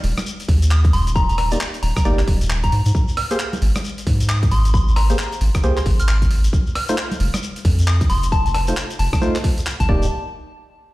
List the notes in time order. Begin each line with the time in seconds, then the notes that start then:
0.04 D#1, open hi-hat
0.17 cross-stick, closed hi-hat, high conga, shekere
0.26 shekere
0.40 closed hi-hat, shekere
0.48 D#2, kick, open hi-hat
0.62 closed hi-hat, shekere
0.71 D#6, clap, shekere
0.85 kick, closed hi-hat, shekere
0.93 D#1 C6, open hi-hat
1.07 closed hi-hat, shekere
1.15 A#5, kick, shekere
1.29 A#5, closed hi-hat, shekere
1.38 A#5, cross-stick, open hi-hat
1.51 A#3 D#4 G4 D5 A#5, closed hi-hat, shekere
1.60 clap, shekere
1.74 closed hi-hat, shekere
1.83 D#1 A#5, open hi-hat
1.96 A#5, kick, cross-stick, closed hi-hat, high conga, shekere
2.05 G1 A#3 D#4 G4 D5, shekere
2.19 clap, closed hi-hat, shekere
2.28 D#1, kick, open hi-hat
2.41 closed hi-hat, shekere
2.50 clap
2.63 D#1 A#5, kick, closed hi-hat, shekere
2.72 G#2, open hi-hat
2.86 G#2, closed hi-hat, shekere
2.95 kick, shekere
3.08 shekere
3.17 F6, cross-stick, open hi-hat
3.31 A#3 G4 G#4 C5, closed hi-hat, shekere
3.39 clap, shekere
3.53 closed hi-hat, high conga, shekere
3.62 G#1, open hi-hat
3.75 cross-stick, closed hi-hat, high conga, shekere
3.84 shekere
3.98 closed hi-hat, shekere
4.07 G#2, kick, open hi-hat
4.20 closed hi-hat, shekere
4.29 D#6, clap, shekere
4.43 kick, closed hi-hat, shekere
4.51 G#1 C6, open hi-hat
4.65 closed hi-hat, shekere
4.74 C6, kick, shekere
4.88 shekere
4.96 A#5, cross-stick, open hi-hat
5.10 A#3 G4 G#4 C5, closed hi-hat, shekere
5.19 clap, shekere
5.32 closed hi-hat, shekere
5.41 G#1, open hi-hat
5.55 kick, cross-stick, closed hi-hat, shekere
5.63 C2 A#3 G4 G#4 C5, shekere
5.77 C6, clap, closed hi-hat, shekere
5.86 G#1, kick, open hi-hat
6.00 F6, closed hi-hat, shekere
6.08 F6, clap, shekere
6.22 kick, closed hi-hat, shekere
6.31 open hi-hat
6.44 closed hi-hat, shekere
6.53 kick, shekere
6.67 shekere
6.75 F6, cross-stick, open hi-hat
6.89 A3 D#4 F4 C5, closed hi-hat, shekere
6.98 clap, shekere
7.11 closed hi-hat, high conga, shekere
7.20 F1, open hi-hat
7.34 cross-stick, closed hi-hat, high conga, shekere
7.43 shekere
7.56 closed hi-hat, shekere
7.65 F2, kick, open hi-hat
7.79 closed hi-hat, shekere
7.87 D#6, clap, shekere
8.01 kick, closed hi-hat, shekere
8.10 F1 C6, open hi-hat
8.23 closed hi-hat, shekere
8.32 A5, kick, shekere
8.46 A5, closed hi-hat, shekere
8.54 A5, cross-stick, open hi-hat
8.67 A3 D#4 F4 C5 A5, closed hi-hat, shekere
8.77 clap, shekere
8.90 closed hi-hat, shekere
8.99 F1 A5, open hi-hat
9.13 A5, kick, cross-stick, closed hi-hat, high conga, shekere
9.22 A3 D#4 F4 C5, shekere
9.35 clap, closed hi-hat, shekere
9.44 kick, open hi-hat
9.58 closed hi-hat, shekere
9.66 clap, shekere
9.80 A1 A5, kick, closed hi-hat, shekere
9.89 D#1 A#3 D#4 G4 D5, kick
10.03 shekere